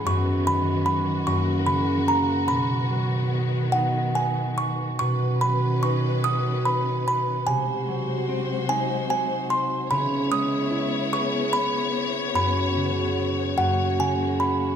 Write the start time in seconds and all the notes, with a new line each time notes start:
Already playing: G#2 E3 E4 G#4
0.05 F#2 D#3 B3 F#4 C#6
0.46 D#3 B5
0.86 F#3 B5
1.26 F#2 E3 A#3 C#6
1.66 C#3 B5
2.08 A#3 A#5
2.48 B2 D#3 B3 B5
2.90 F#3
3.32 B3
3.72 D#4 F#5
4.15 G#5
4.58 C#6
4.99 B2 D#3 C#4 B4 C#6
5.41 F#3 B5
5.83 D#4 C#6
6.24 F#4 D#6
6.65 B5
7.08 B5
7.47 C3 G#3 F#4 C5 G#5
7.88 F#3
8.29 C4
8.69 D#4 G#5
9.10 G#5
9.50 C6
9.89 C#3 B3 E4 C#5 B5
10.30 G#3 D#6
10.71 E4
11.12 G#4 C#6
11.53 B5
12.34 F#2 F#4 B5
12.76 C#3
13.17 B3
13.58 F#2 A#3 F#4 F#5
13.99 C#3 G#5
14.40 A#3 B5